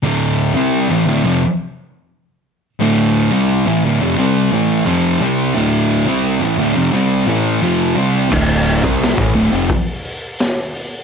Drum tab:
CC |----------------|----------------|----------------|x---------------|
HH |----------------|----------------|----------------|--o-o-o-o-o-o-o-|
SD |----------------|----------------|----------------|----o-------o---|
BD |----------------|----------------|----------------|o--o-o--o-------|